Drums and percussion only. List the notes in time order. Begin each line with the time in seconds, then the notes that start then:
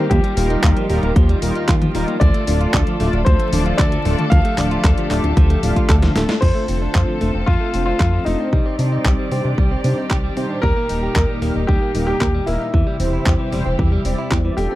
0.11 kick, closed hi-hat
0.24 closed hi-hat
0.37 open hi-hat
0.50 closed hi-hat
0.63 kick, clap, closed hi-hat
0.77 closed hi-hat
0.90 open hi-hat
1.03 closed hi-hat
1.16 kick, closed hi-hat
1.29 closed hi-hat
1.42 open hi-hat
1.55 closed hi-hat
1.68 kick, clap, closed hi-hat
1.82 closed hi-hat, high tom
1.95 open hi-hat
2.08 closed hi-hat
2.21 kick, closed hi-hat
2.34 closed hi-hat
2.47 open hi-hat
2.61 closed hi-hat
2.74 kick, clap, closed hi-hat
2.87 closed hi-hat
3.00 open hi-hat
3.13 closed hi-hat
3.26 kick, closed hi-hat
3.40 closed hi-hat
3.53 open hi-hat, high tom
3.79 kick, clap, closed hi-hat
3.92 closed hi-hat
4.05 open hi-hat
4.19 closed hi-hat, high tom
4.32 kick, closed hi-hat
4.45 closed hi-hat
4.58 clap, open hi-hat, high tom
4.71 closed hi-hat
4.84 kick, clap, closed hi-hat
4.98 closed hi-hat
5.11 clap, open hi-hat
5.24 closed hi-hat
5.37 kick, closed hi-hat
5.50 closed hi-hat
5.63 open hi-hat
5.76 kick, closed hi-hat
5.89 kick, clap, closed hi-hat
6.03 snare, closed hi-hat, high tom
6.16 snare, open hi-hat
6.29 snare, closed hi-hat
6.42 kick, crash
6.68 open hi-hat
6.95 kick, clap
7.21 open hi-hat
7.47 kick
7.74 open hi-hat
8.00 kick, clap
8.26 open hi-hat
8.53 kick
8.79 open hi-hat
9.05 kick, clap
9.32 open hi-hat
9.58 kick
9.84 open hi-hat
10.10 kick, clap
10.37 open hi-hat
10.63 kick
10.89 open hi-hat
11.16 kick, clap
11.42 open hi-hat
11.69 kick
11.95 open hi-hat
12.21 kick, clap
12.47 open hi-hat
12.74 kick
13.00 open hi-hat
13.26 kick, clap
13.52 open hi-hat
13.79 kick
14.05 open hi-hat
14.31 kick, clap
14.58 open hi-hat